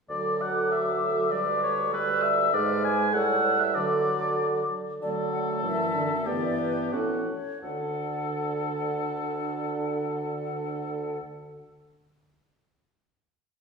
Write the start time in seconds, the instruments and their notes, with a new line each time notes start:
0.09 bassoon D2, french horn F#3, clarinet A4, oboe D5, flute D6
0.41 oboe F#5
0.71 oboe E5
1.31 french horn G3, clarinet B4, oboe D5, flute D6
1.63 oboe C#5
1.92 french horn G3, clarinet B4, oboe B4, flute E6
2.23 oboe E5
2.52 bassoon G#2, french horn G#3, clarinet B4, oboe D5, flute F6
2.84 oboe G#5
3.13 bassoon A2, french horn G3, clarinet C#5, oboe F#5, flute E6
3.44 clarinet B4
3.60 oboe E5
3.75 bassoon D3, french horn F#3, clarinet A4, oboe D5, flute D6
5.02 bassoon D3, french horn F#3, clarinet A3, oboe A4, flute D5
5.32 flute F#5
5.63 bassoon F#2, french horn E3, flute E5
5.95 french horn D3
6.26 bassoon G2, french horn E3, clarinet B3, oboe G4, flute D5
6.58 flute B4
6.92 bassoon A2, french horn E3, clarinet C#4, oboe F#4, flute A4
7.27 flute C#5
7.62 bassoon D2, french horn D3, clarinet D4, oboe A4, flute F#5